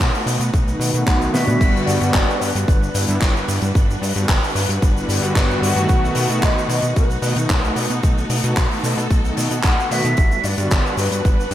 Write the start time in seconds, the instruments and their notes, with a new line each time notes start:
Already playing: string section A3 D#4 F#4 B4
0.00 analog synth bass B1, kick, clap, closed hi-hat, shaker
0.14 open hi-hat, shaker
0.26 analog synth bass B2, open hi-hat, shaker
0.40 analog synth bass B2, closed hi-hat, shaker
0.54 analog synth bass B1, kick, closed hi-hat, shaker
0.67 analog synth pad D#3 A3 B3 D#4, closed hi-hat, shaker
0.79 analog synth bass B2, analog synth pad D#3 A3 B3 F#4, open hi-hat, shaker
0.94 analog synth bass B2, analog synth pad D#3 A3 B3 F#4, closed hi-hat, shaker
1.07 analog synth bass B1, flute F#5, kick, clap, closed hi-hat, shaker
1.22 closed hi-hat, shaker
1.33 analog synth bass B2, analog synth pad D3 G3 B3 F#4, flute E5, snare, open hi-hat, shaker
1.48 analog synth bass B2, closed hi-hat, mid tom, shaker
1.60 analog synth bass G1, analog synth pad D3 G3 B3 F#4, string section G3 D4 F#4 B4, kick, closed hi-hat, crash, shaker
1.77 shaker
1.81 flute E5
1.86 analog synth bass G2, flute D5, open hi-hat, shaker
2.00 analog synth bass G2, analog synth pad D3 G3 B3 F#4, closed hi-hat, shaker
2.14 analog synth bass G1, kick, clap, closed hi-hat, shaker
2.30 shaker
2.39 analog synth bass G2, flute B4, open hi-hat, shaker
2.55 analog synth bass G2, closed hi-hat, shaker
2.68 analog synth bass G1, kick, closed hi-hat, shaker
2.83 shaker
2.95 analog synth bass G2, analog synth pad D3 G3 B3 E4, open hi-hat, shaker
3.09 analog synth bass G2, closed hi-hat, shaker
3.21 analog synth bass G1, kick, clap, closed hi-hat, shaker
3.37 shaker
3.48 analog synth bass G2, open hi-hat, shaker
3.62 analog synth bass G2, closed hi-hat, shaker
3.75 analog synth bass G1, kick, closed hi-hat, shaker
3.91 shaker
4.02 analog synth bass G2, open hi-hat, shaker
4.15 analog synth bass G2, analog synth pad D3 G3 B3 F#4, closed hi-hat, shaker
4.29 analog synth bass G1, kick, clap, closed hi-hat, shaker
4.43 open hi-hat, shaker
4.55 analog synth bass G2, open hi-hat, shaker
4.69 analog synth bass G2, closed hi-hat, shaker
4.82 analog synth bass G1, kick, closed hi-hat, shaker
4.96 analog synth pad D3 G3 B3 E4, shaker
5.08 analog synth bass G2, analog synth pad D3 G3 B3 F#4, open hi-hat, shaker
5.23 analog synth bass G2, analog synth pad D3 G3 B3 F#4, closed hi-hat, shaker
5.35 analog synth bass G1, flute B4, kick, clap, closed hi-hat, shaker
5.51 shaker
5.61 analog synth bass G2, analog synth pad D#3 A3 B3 F#4, flute F#5, open hi-hat, shaker
5.76 analog synth bass G2, closed hi-hat, shaker
5.89 analog synth bass B1, string section A3 D#4, kick, closed hi-hat, shaker
6.05 shaker
6.15 analog synth bass B2, open hi-hat, shaker
6.29 analog synth bass B2, analog synth pad D#3 A3 B3 F#4, closed hi-hat, shaker
6.43 analog synth bass B1, flute D#5, kick, clap, closed hi-hat, shaker
6.58 shaker
6.69 analog synth bass B2, flute D#5, open hi-hat, shaker
6.82 analog synth bass B2, closed hi-hat, shaker
6.96 analog synth bass B1, flute B4, kick, closed hi-hat, shaker
7.10 shaker
7.22 analog synth bass B2, analog synth pad D#3 A3 B3 D#4, open hi-hat, shaker
7.36 analog synth bass B2, closed hi-hat, shaker
7.50 analog synth bass B1, kick, clap, closed hi-hat, shaker
7.64 shaker
7.76 analog synth bass B2, open hi-hat, shaker
7.90 analog synth bass B2, closed hi-hat, shaker
8.03 analog synth bass B1, string section A4, kick, closed hi-hat, shaker
8.18 shaker
8.30 analog synth bass B2, open hi-hat, shaker
8.44 analog synth bass B2, analog synth pad D#3 A3 B3 F#4, closed hi-hat, shaker
8.57 analog synth bass B1, kick, clap, closed hi-hat, shaker
8.71 open hi-hat, shaker
8.83 analog synth bass B2, open hi-hat, shaker
8.97 analog synth bass B2, closed hi-hat, shaker
9.11 analog synth bass B1, kick, closed hi-hat, shaker
9.24 analog synth pad D#3 A3 B3 D#4, shaker
9.37 analog synth bass B2, open hi-hat, shaker
9.51 analog synth bass B2, closed hi-hat, shaker
9.64 analog synth bass B1, flute F#5, kick, clap, closed hi-hat, shaker
9.78 analog synth pad D#3 A3 B3 F#4, shaker
9.90 analog synth bass B2, analog synth pad D#3 A3 B3 F#4, flute E5, open hi-hat, shaker
10.05 analog synth bass B2, closed hi-hat, shaker
10.17 analog synth bass G1, string section G3 D4 B4, kick, closed hi-hat, shaker
10.32 shaker
10.44 analog synth bass G2, flute D5, open hi-hat, shaker
10.58 analog synth bass G2, analog synth pad D3 G3 B3 F#4, closed hi-hat, shaker
10.71 analog synth bass G1, kick, clap, closed hi-hat, shaker
10.86 shaker
10.97 analog synth bass G2, flute B4, open hi-hat, shaker
11.11 analog synth bass G2, closed hi-hat, shaker
11.25 analog synth bass G1, kick, closed hi-hat, shaker
11.40 shaker
11.51 analog synth bass G2, analog synth pad D3, open hi-hat